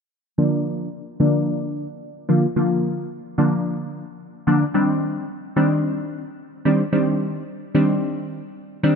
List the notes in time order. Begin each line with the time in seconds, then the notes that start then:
0.38 D3 F3 A#3 D4
1.20 D3 F3 A#3 D4
2.29 D3 F3 A#3 F4
2.56 D3 F3 A#3 F4
3.38 D3 F3 A#3 D4
4.47 D3 F3 A#3 D4
4.74 D#3 G3 C4 D4
5.56 D#3 G3 C4 D4
6.65 D#3 G3 C4 D4
6.92 D#3 G3 C4 D4
7.75 D#3 G3 C4 D4
8.83 D#3 G3 C4 D4